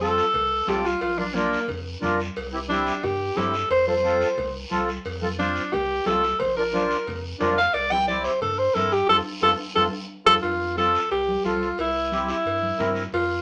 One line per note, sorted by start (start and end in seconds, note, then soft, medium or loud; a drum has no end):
0.00 0.21 F2 medium
0.00 0.24 C4 medium
0.00 0.24 F4 medium
0.00 0.70 A4 loud
0.00 0.25 A4 medium
0.00 high conga medium
0.00 short guiro medium
0.18 short guiro medium
0.34 0.61 C2 loud
0.34 cowbell medium
0.34 low conga medium
0.34 long guiro medium
0.67 0.95 C2 loud
0.67 0.85 C4 medium
0.67 0.85 F4 medium
0.67 0.87 G4 medium
0.67 0.86 A4 medium
0.67 high conga medium
0.67 low timbale medium
0.67 short guiro medium
0.85 1.01 F4 loud
0.85 short guiro medium
1.01 1.56 A#1 loud
1.01 1.20 F4 medium
1.01 cowbell medium
1.01 long guiro medium
1.18 1.24 D4 medium
1.18 1.36 D4 medium
1.18 1.24 F4 medium
1.18 1.24 A#4 medium
1.18 high conga medium
1.34 1.67 A#3 loud
1.34 1.59 D4 medium
1.34 1.59 F4 medium
1.34 1.59 A#4 medium
1.34 high conga medium
1.34 short guiro medium
1.53 short guiro medium
1.68 1.96 F2 medium
1.68 cowbell medium
1.68 low conga medium
1.68 long guiro medium
2.01 2.30 F2 loud
2.01 2.20 D4 medium
2.01 2.20 F4 medium
2.01 2.20 A#4 medium
2.01 high conga medium
2.01 low conga medium
2.01 short guiro medium
2.20 short guiro medium
2.36 2.91 C2 loud
2.36 cowbell loud
2.36 long guiro medium
2.52 2.59 C4 medium
2.52 2.59 E4 medium
2.52 2.59 G4 medium
2.69 2.93 C4 medium
2.69 3.06 D4 loud
2.69 2.93 E4 medium
2.69 2.94 G4 medium
2.69 high conga medium
2.69 short guiro medium
2.86 short guiro medium
3.03 3.30 G2 loud
3.03 3.38 G4 medium
3.03 cowbell medium
3.03 low conga medium
3.03 long guiro medium
3.36 3.64 G2 loud
3.36 3.54 C4 medium
3.36 3.54 E4 medium
3.36 3.55 G4 medium
3.36 3.70 A4 medium
3.36 high conga medium
3.36 low timbale medium
3.36 short guiro medium
3.54 short guiro medium
3.70 4.24 F2 loud
3.70 3.87 C5 loud
3.70 cowbell loud
3.70 long guiro medium
3.87 3.93 C4 medium
3.87 3.93 F4 medium
3.87 3.94 A4 medium
3.87 4.53 C5 medium
3.87 high conga medium
4.03 4.27 C4 medium
4.03 4.28 F4 medium
4.03 4.28 A4 medium
4.03 high conga medium
4.03 short guiro medium
4.21 short guiro medium
4.37 4.65 C2 loud
4.37 cowbell medium
4.37 low conga medium
4.37 long guiro medium
4.70 4.98 C2 loud
4.70 4.89 C4 medium
4.70 4.89 F4 medium
4.70 4.89 A4 medium
4.70 high conga medium
4.70 short guiro medium
4.88 short guiro medium
5.05 5.59 F2 loud
5.05 cowbell medium
5.05 long guiro medium
5.22 5.28 C4 medium
5.22 5.28 F4 medium
5.22 5.28 A4 medium
5.22 high conga medium
5.38 5.62 C4 medium
5.38 5.74 D4 loud
5.38 5.62 F4 medium
5.38 5.62 C5 medium
5.38 high conga medium
5.38 short guiro medium
5.56 short guiro medium
5.73 6.00 C2 loud
5.73 6.05 G4 medium
5.73 cowbell medium
5.73 low conga medium
5.73 long guiro medium
6.05 6.33 C2 loud
6.05 6.23 C4 medium
6.05 6.24 F4 medium
6.05 6.24 A4 medium
6.05 6.41 A4 medium
6.05 high conga medium
6.05 low timbale medium
6.05 short guiro medium
6.23 short guiro medium
6.40 6.94 A#1 loud
6.40 6.56 C5 medium
6.40 cowbell loud
6.40 low conga medium
6.40 long guiro medium
6.56 6.63 D4 medium
6.56 6.63 F4 medium
6.56 7.22 A#4 medium
6.56 6.63 A#4 medium
6.73 6.97 D4 medium
6.73 6.97 F4 medium
6.73 6.97 C5 medium
6.73 high conga medium
6.73 short guiro medium
6.91 short guiro medium
7.07 7.34 F2 medium
7.07 cowbell medium
7.07 low conga medium
7.07 long guiro medium
7.40 7.68 F2 loud
7.40 7.58 D4 medium
7.40 7.58 F4 medium
7.40 7.58 A#4 loud
7.40 high conga medium
7.40 low conga medium
7.40 low timbale medium
7.40 short guiro medium
7.57 7.75 F5 loud
7.57 short guiro medium
7.74 8.28 C2 medium
7.74 7.93 D5 loud
7.74 cowbell loud
7.74 long guiro medium
7.91 7.97 C4 medium
7.91 7.97 E4 medium
7.91 7.97 G4 medium
7.91 8.07 G5 medium
7.91 high conga medium
8.07 8.31 C4 medium
8.07 8.31 E4 medium
8.07 8.32 G4 medium
8.07 8.26 D5 medium
8.07 high conga medium
8.07 short guiro medium
8.24 8.41 C5 medium
8.24 short guiro medium
8.41 8.68 G2 loud
8.41 8.60 A4 medium
8.41 cowbell medium
8.41 low conga medium
8.41 long guiro medium
8.59 8.76 C5 medium
8.75 9.02 G2 loud
8.75 8.93 C4 medium
8.75 8.93 E4 medium
8.75 8.94 A4 medium
8.75 8.93 A#4 medium
8.75 high conga medium
8.75 short guiro medium
8.92 9.08 G4 loud
8.92 short guiro medium
9.09 9.21 F2 loud
9.09 9.20 C4 medium
9.09 9.20 F4 medium
9.09 9.20 A4 loud
9.09 9.17 A4 loud
9.09 high conga medium
9.09 high timbale medium
9.09 long guiro loud
9.42 9.55 F2 loud
9.42 9.53 C4 loud
9.42 9.53 F4 loud
9.42 9.53 A4 loud
9.42 9.51 A4 loud
9.42 high conga medium
9.42 high timbale loud
9.42 long guiro loud
9.75 9.89 F2 loud
9.75 9.86 C4 loud
9.75 9.86 F4 loud
9.75 9.86 A4 loud
9.75 9.84 A4 medium
9.75 high conga medium
9.75 high timbale loud
10.26 10.39 F2 loud
10.26 10.37 C4 loud
10.26 10.37 F4 loud
10.26 10.34 A4 loud
10.26 10.37 A4 loud
10.26 high conga loud
10.26 high timbale loud
10.26 long guiro loud
10.42 10.97 F2 loud
10.42 10.74 F4 medium
10.42 cowbell medium
10.42 long guiro medium
10.76 11.00 C4 medium
10.76 11.00 F4 medium
10.76 11.01 A4 medium
10.76 11.09 A4 loud
10.76 high conga medium
10.76 short guiro medium
10.95 short guiro medium
11.11 11.38 C2 medium
11.11 11.42 G4 medium
11.11 cowbell medium
11.11 long guiro medium
11.28 high conga medium
11.44 11.72 C2 medium
11.44 11.68 C4 medium
11.44 11.68 F4 medium
11.44 11.76 F4 medium
11.44 11.69 A4 medium
11.44 high conga medium
11.44 short guiro medium
11.62 short guiro medium
11.78 12.32 C2 loud
11.78 12.26 E4 medium
11.78 cowbell loud
11.78 long guiro medium
12.12 12.35 C4 medium
12.12 12.36 E4 medium
12.12 12.36 G4 medium
12.12 high conga medium
12.12 short guiro medium
12.29 12.92 E4 medium
12.29 short guiro medium
12.45 12.72 G2 medium
12.45 cowbell medium
12.45 long guiro medium
12.63 high conga medium
12.79 13.06 G2 medium
12.79 13.03 C4 medium
12.79 13.03 E4 medium
12.79 13.03 A#4 medium
12.79 high conga medium
12.79 low conga medium
12.79 low timbale medium
12.79 short guiro medium
12.95 short guiro medium
13.12 13.42 F2 loud
13.12 13.42 F4 loud
13.12 cowbell loud
13.12 long guiro medium